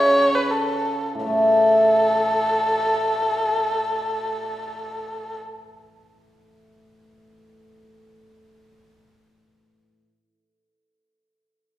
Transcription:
Already playing: C#3 C#5
0.35 B4
0.51 A4
1.15 A2
1.20 E3
1.25 A3 A4

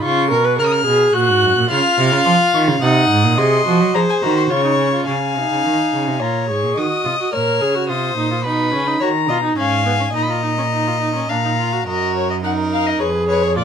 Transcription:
0.03 C#3 F4 C#6
0.31 B2 A#4
0.45 B4
0.58 C#3 A#4 F6
0.66 D#6
0.72 F6
0.86 B2 G#4
1.14 A#2 F#4 F#6
1.29 G#2
1.42 F#2
1.57 A#2
1.69 C#3 F4 F5 F6
1.98 C3
2.12 C#3
2.25 F3 C6
2.54 D#3 C#6
2.68 C#3
2.81 C3 D#4 F#5 D#6
3.10 G#2
3.24 A#2
3.38 C3 G#4 D#5 C6
3.66 F3 F#4
3.80 F#3
3.94 F3 G#4 C5 A#5
4.09 G#5
4.22 D#3 F#4 A#5
4.37 C6
4.50 C#3 F4 C#5 C#6
4.64 D#4
4.79 C#4
4.93 F4
5.07 C#3 C#4 F5 G#5
5.36 C3 D#4
5.51 C#3
5.65 D#3
5.93 C#3
6.07 C3
6.20 A#2 F4 C#5 A#5
6.49 G#2 G#4 C#6
6.63 A#2
6.77 D#3 F#4 D#5 D#6
7.05 C3 F4
7.20 F#4
7.33 A#2 A#4 C#5 F6
7.61 C#3 G#4
7.75 F#4
7.89 C3 F4 C5 D#6
8.17 A#2 D#4
8.31 F4
8.44 B2 D#4 B4 B5
8.73 C#3 C#4
8.87 D#4
9.00 D#3 F#4 C#5 A#5
9.29 B2 F4 D#5
9.44 D#4
9.57 G#2 C#4 F5 G#5
9.86 B3
10.00 C#4
10.14 A#2 D#4 D#5 A#5
10.22 B5
10.29 F4 A#5
10.43 D#4
10.58 C#4
10.73 D#4
10.87 F4
11.01 D#4
11.15 C#4
11.29 A#2 D4 F5 A#5
11.44 D#4
11.58 F4
11.72 F#4
11.87 F#2 F#4 A#4 D#5
12.17 C#5
12.30 D#5
12.44 D#4 A#4 F#5
12.73 F5
12.86 D#5
12.99 F2 G#4 B4 C#5
13.29 B4 C#5
13.42 C#5
13.56 A#2 F4 D5

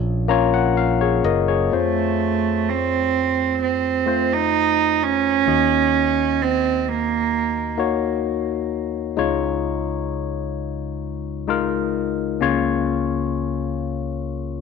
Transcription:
Already playing: A#1
0.28 A#3 C#4 F4 C#5 A#5
0.54 F#5
0.77 F5
1.01 G#4 C#5
1.24 F#1 A#4 D#5
1.48 G#4 C#5
1.72 F2 A3 C4 F4 C5
2.69 C4
3.62 C4
4.06 A3 F4 C5
4.33 D#4
5.03 C#4
5.46 D#2 D#3 A#3 D#4 F#4 D#5
6.42 C4
6.89 A#3
7.78 A#3 D#4 F#4 C#5
9.17 C#2 C#3 G#3 D#4 F4 C#5
11.48 G#3 D#4 F4 A#4
12.41 C#2 C#3 A#3 C#4 F4 C#5

